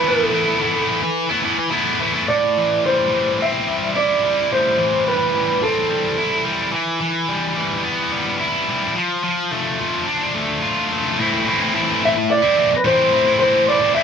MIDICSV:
0, 0, Header, 1, 4, 480
1, 0, Start_track
1, 0, Key_signature, 0, "minor"
1, 0, Tempo, 556070
1, 48, Time_signature, 4, 2, 24, 8
1, 12113, End_track
2, 0, Start_track
2, 0, Title_t, "Clean electric guitar"
2, 0, Program_c, 0, 27
2, 72, Note_on_c, 0, 69, 79
2, 1464, Note_off_c, 0, 69, 0
2, 1971, Note_on_c, 0, 74, 82
2, 2464, Note_off_c, 0, 74, 0
2, 2467, Note_on_c, 0, 72, 79
2, 2951, Note_off_c, 0, 72, 0
2, 2954, Note_on_c, 0, 76, 79
2, 3419, Note_off_c, 0, 76, 0
2, 3422, Note_on_c, 0, 74, 86
2, 3903, Note_off_c, 0, 74, 0
2, 3906, Note_on_c, 0, 72, 77
2, 4382, Note_off_c, 0, 72, 0
2, 4385, Note_on_c, 0, 71, 83
2, 4855, Note_on_c, 0, 69, 69
2, 4875, Note_off_c, 0, 71, 0
2, 5543, Note_off_c, 0, 69, 0
2, 10404, Note_on_c, 0, 76, 115
2, 10620, Note_off_c, 0, 76, 0
2, 10624, Note_on_c, 0, 74, 93
2, 11015, Note_off_c, 0, 74, 0
2, 11019, Note_on_c, 0, 71, 60
2, 11088, Note_off_c, 0, 71, 0
2, 11095, Note_on_c, 0, 72, 84
2, 11541, Note_off_c, 0, 72, 0
2, 11565, Note_on_c, 0, 72, 92
2, 11792, Note_off_c, 0, 72, 0
2, 11812, Note_on_c, 0, 74, 91
2, 12036, Note_off_c, 0, 74, 0
2, 12040, Note_on_c, 0, 76, 92
2, 12113, Note_off_c, 0, 76, 0
2, 12113, End_track
3, 0, Start_track
3, 0, Title_t, "Distorted electric guitar"
3, 0, Program_c, 1, 30
3, 32, Note_on_c, 1, 52, 104
3, 43, Note_on_c, 1, 57, 98
3, 55, Note_on_c, 1, 59, 106
3, 61, Note_on_c, 1, 64, 103
3, 264, Note_off_c, 1, 52, 0
3, 274, Note_on_c, 1, 52, 92
3, 275, Note_off_c, 1, 57, 0
3, 283, Note_off_c, 1, 59, 0
3, 285, Note_on_c, 1, 57, 80
3, 291, Note_off_c, 1, 64, 0
3, 293, Note_on_c, 1, 59, 78
3, 302, Note_on_c, 1, 64, 92
3, 383, Note_off_c, 1, 64, 0
3, 394, Note_on_c, 1, 64, 78
3, 399, Note_off_c, 1, 59, 0
3, 410, Note_on_c, 1, 59, 64
3, 417, Note_off_c, 1, 57, 0
3, 427, Note_on_c, 1, 57, 60
3, 506, Note_off_c, 1, 52, 0
3, 517, Note_off_c, 1, 57, 0
3, 517, Note_on_c, 1, 52, 82
3, 520, Note_off_c, 1, 59, 0
3, 527, Note_on_c, 1, 57, 95
3, 531, Note_on_c, 1, 59, 104
3, 535, Note_off_c, 1, 64, 0
3, 546, Note_on_c, 1, 64, 101
3, 876, Note_off_c, 1, 64, 0
3, 879, Note_off_c, 1, 59, 0
3, 888, Note_off_c, 1, 57, 0
3, 1116, Note_on_c, 1, 64, 80
3, 1122, Note_off_c, 1, 52, 0
3, 1132, Note_on_c, 1, 59, 62
3, 1143, Note_on_c, 1, 57, 60
3, 1226, Note_on_c, 1, 52, 77
3, 1230, Note_off_c, 1, 57, 0
3, 1234, Note_off_c, 1, 59, 0
3, 1240, Note_on_c, 1, 57, 74
3, 1245, Note_on_c, 1, 59, 76
3, 1247, Note_off_c, 1, 64, 0
3, 1258, Note_on_c, 1, 64, 88
3, 1361, Note_off_c, 1, 59, 0
3, 1361, Note_off_c, 1, 64, 0
3, 1363, Note_off_c, 1, 57, 0
3, 1465, Note_off_c, 1, 52, 0
3, 1475, Note_on_c, 1, 52, 90
3, 1484, Note_on_c, 1, 57, 110
3, 1491, Note_on_c, 1, 59, 96
3, 1497, Note_on_c, 1, 64, 104
3, 1715, Note_off_c, 1, 52, 0
3, 1724, Note_off_c, 1, 57, 0
3, 1726, Note_on_c, 1, 52, 67
3, 1734, Note_off_c, 1, 59, 0
3, 1734, Note_on_c, 1, 57, 80
3, 1745, Note_on_c, 1, 59, 82
3, 1747, Note_off_c, 1, 64, 0
3, 1757, Note_on_c, 1, 64, 88
3, 1832, Note_off_c, 1, 64, 0
3, 1842, Note_on_c, 1, 64, 64
3, 1844, Note_off_c, 1, 59, 0
3, 1854, Note_on_c, 1, 59, 64
3, 1861, Note_off_c, 1, 57, 0
3, 1871, Note_on_c, 1, 57, 54
3, 1950, Note_off_c, 1, 64, 0
3, 1952, Note_off_c, 1, 52, 0
3, 1956, Note_off_c, 1, 59, 0
3, 1965, Note_off_c, 1, 57, 0
3, 1969, Note_on_c, 1, 45, 65
3, 2220, Note_on_c, 1, 52, 66
3, 2451, Note_on_c, 1, 55, 57
3, 2689, Note_off_c, 1, 52, 0
3, 2693, Note_on_c, 1, 52, 52
3, 2942, Note_on_c, 1, 60, 62
3, 3170, Note_off_c, 1, 55, 0
3, 3171, Note_off_c, 1, 45, 0
3, 3174, Note_on_c, 1, 55, 60
3, 3410, Note_on_c, 1, 64, 67
3, 3654, Note_off_c, 1, 55, 0
3, 3657, Note_on_c, 1, 55, 61
3, 3901, Note_on_c, 1, 45, 68
3, 4128, Note_off_c, 1, 52, 0
3, 4131, Note_on_c, 1, 52, 65
3, 4139, Note_off_c, 1, 60, 0
3, 4370, Note_off_c, 1, 55, 0
3, 4373, Note_on_c, 1, 55, 64
3, 4605, Note_off_c, 1, 52, 0
3, 4615, Note_on_c, 1, 52, 57
3, 4863, Note_on_c, 1, 60, 64
3, 5083, Note_off_c, 1, 55, 0
3, 5093, Note_on_c, 1, 55, 63
3, 5100, Note_off_c, 1, 45, 0
3, 5330, Note_off_c, 1, 64, 0
3, 5333, Note_on_c, 1, 64, 71
3, 5553, Note_off_c, 1, 55, 0
3, 5563, Note_on_c, 1, 55, 62
3, 5783, Note_off_c, 1, 52, 0
3, 5794, Note_on_c, 1, 52, 65
3, 5811, Note_off_c, 1, 55, 0
3, 5816, Note_off_c, 1, 64, 0
3, 5822, Note_off_c, 1, 60, 0
3, 6038, Note_off_c, 1, 52, 0
3, 6049, Note_on_c, 1, 52, 66
3, 6291, Note_on_c, 1, 55, 61
3, 6525, Note_off_c, 1, 52, 0
3, 6536, Note_on_c, 1, 52, 59
3, 6767, Note_on_c, 1, 59, 65
3, 6995, Note_off_c, 1, 55, 0
3, 7005, Note_on_c, 1, 55, 60
3, 7247, Note_on_c, 1, 64, 70
3, 7482, Note_off_c, 1, 55, 0
3, 7492, Note_on_c, 1, 55, 62
3, 7722, Note_off_c, 1, 52, 0
3, 7725, Note_on_c, 1, 53, 65
3, 7736, Note_off_c, 1, 59, 0
3, 7736, Note_off_c, 1, 64, 0
3, 7738, Note_off_c, 1, 55, 0
3, 7963, Note_off_c, 1, 53, 0
3, 7973, Note_on_c, 1, 53, 62
3, 8208, Note_on_c, 1, 57, 62
3, 8441, Note_off_c, 1, 53, 0
3, 8451, Note_on_c, 1, 53, 55
3, 8689, Note_on_c, 1, 62, 69
3, 8920, Note_off_c, 1, 57, 0
3, 8930, Note_on_c, 1, 57, 62
3, 9170, Note_on_c, 1, 65, 64
3, 9407, Note_off_c, 1, 57, 0
3, 9417, Note_on_c, 1, 57, 55
3, 9651, Note_on_c, 1, 45, 100
3, 9656, Note_off_c, 1, 57, 0
3, 9656, Note_off_c, 1, 62, 0
3, 9656, Note_off_c, 1, 65, 0
3, 9657, Note_off_c, 1, 53, 0
3, 9662, Note_on_c, 1, 52, 100
3, 9667, Note_on_c, 1, 57, 105
3, 9668, Note_on_c, 1, 60, 102
3, 9675, Note_on_c, 1, 64, 104
3, 9892, Note_off_c, 1, 52, 0
3, 9895, Note_on_c, 1, 52, 76
3, 9900, Note_off_c, 1, 57, 0
3, 9904, Note_on_c, 1, 57, 83
3, 9905, Note_off_c, 1, 60, 0
3, 9909, Note_on_c, 1, 60, 90
3, 9914, Note_off_c, 1, 64, 0
3, 9918, Note_on_c, 1, 64, 97
3, 10012, Note_off_c, 1, 64, 0
3, 10015, Note_on_c, 1, 64, 64
3, 10029, Note_off_c, 1, 60, 0
3, 10032, Note_on_c, 1, 60, 67
3, 10039, Note_off_c, 1, 57, 0
3, 10043, Note_on_c, 1, 57, 65
3, 10123, Note_off_c, 1, 45, 0
3, 10127, Note_on_c, 1, 45, 87
3, 10131, Note_off_c, 1, 52, 0
3, 10132, Note_off_c, 1, 57, 0
3, 10135, Note_on_c, 1, 52, 101
3, 10135, Note_on_c, 1, 57, 99
3, 10139, Note_off_c, 1, 60, 0
3, 10142, Note_on_c, 1, 60, 100
3, 10148, Note_off_c, 1, 64, 0
3, 10152, Note_on_c, 1, 64, 115
3, 10490, Note_off_c, 1, 64, 0
3, 10494, Note_off_c, 1, 60, 0
3, 10502, Note_off_c, 1, 57, 0
3, 10504, Note_off_c, 1, 52, 0
3, 10723, Note_on_c, 1, 64, 89
3, 10732, Note_off_c, 1, 45, 0
3, 10738, Note_on_c, 1, 60, 69
3, 10756, Note_on_c, 1, 57, 62
3, 10843, Note_on_c, 1, 52, 74
3, 10845, Note_off_c, 1, 57, 0
3, 10848, Note_on_c, 1, 57, 81
3, 10851, Note_off_c, 1, 60, 0
3, 10861, Note_on_c, 1, 60, 77
3, 10864, Note_off_c, 1, 64, 0
3, 10868, Note_on_c, 1, 64, 79
3, 10968, Note_off_c, 1, 60, 0
3, 10969, Note_off_c, 1, 64, 0
3, 10979, Note_off_c, 1, 57, 0
3, 10981, Note_off_c, 1, 52, 0
3, 11088, Note_on_c, 1, 45, 105
3, 11098, Note_on_c, 1, 52, 116
3, 11105, Note_on_c, 1, 57, 106
3, 11113, Note_on_c, 1, 60, 119
3, 11118, Note_on_c, 1, 64, 119
3, 11324, Note_off_c, 1, 52, 0
3, 11327, Note_on_c, 1, 52, 82
3, 11330, Note_off_c, 1, 60, 0
3, 11333, Note_off_c, 1, 57, 0
3, 11337, Note_on_c, 1, 57, 81
3, 11340, Note_on_c, 1, 60, 84
3, 11354, Note_off_c, 1, 64, 0
3, 11357, Note_on_c, 1, 64, 88
3, 11447, Note_off_c, 1, 64, 0
3, 11450, Note_on_c, 1, 64, 79
3, 11457, Note_off_c, 1, 60, 0
3, 11467, Note_on_c, 1, 60, 64
3, 11476, Note_off_c, 1, 57, 0
3, 11480, Note_on_c, 1, 57, 63
3, 11554, Note_off_c, 1, 45, 0
3, 11564, Note_on_c, 1, 45, 92
3, 11573, Note_off_c, 1, 52, 0
3, 11575, Note_off_c, 1, 60, 0
3, 11577, Note_on_c, 1, 52, 100
3, 11580, Note_off_c, 1, 57, 0
3, 11583, Note_on_c, 1, 57, 99
3, 11586, Note_on_c, 1, 60, 106
3, 11592, Note_off_c, 1, 64, 0
3, 11595, Note_on_c, 1, 64, 106
3, 11801, Note_off_c, 1, 52, 0
3, 11804, Note_on_c, 1, 52, 89
3, 11815, Note_off_c, 1, 57, 0
3, 11817, Note_off_c, 1, 60, 0
3, 11818, Note_on_c, 1, 57, 91
3, 11827, Note_on_c, 1, 60, 83
3, 11833, Note_off_c, 1, 64, 0
3, 11836, Note_on_c, 1, 64, 89
3, 11925, Note_off_c, 1, 64, 0
3, 11928, Note_on_c, 1, 64, 77
3, 11935, Note_off_c, 1, 60, 0
3, 11945, Note_on_c, 1, 60, 67
3, 11950, Note_off_c, 1, 57, 0
3, 11954, Note_on_c, 1, 57, 57
3, 12028, Note_off_c, 1, 45, 0
3, 12038, Note_on_c, 1, 45, 92
3, 12042, Note_off_c, 1, 52, 0
3, 12045, Note_on_c, 1, 52, 103
3, 12049, Note_off_c, 1, 57, 0
3, 12049, Note_off_c, 1, 60, 0
3, 12053, Note_on_c, 1, 57, 100
3, 12059, Note_on_c, 1, 60, 103
3, 12062, Note_off_c, 1, 64, 0
3, 12065, Note_on_c, 1, 64, 109
3, 12113, Note_off_c, 1, 45, 0
3, 12113, Note_off_c, 1, 52, 0
3, 12113, Note_off_c, 1, 57, 0
3, 12113, Note_off_c, 1, 60, 0
3, 12113, Note_off_c, 1, 64, 0
3, 12113, End_track
4, 0, Start_track
4, 0, Title_t, "Muted distorted electric guitar strokes"
4, 887, Note_on_c, 9, 29, 49
4, 973, Note_off_c, 9, 29, 0
4, 1371, Note_on_c, 9, 29, 50
4, 1458, Note_off_c, 9, 29, 0
4, 10493, Note_on_c, 9, 29, 54
4, 10580, Note_off_c, 9, 29, 0
4, 10972, Note_on_c, 9, 29, 54
4, 11058, Note_off_c, 9, 29, 0
4, 12113, End_track
0, 0, End_of_file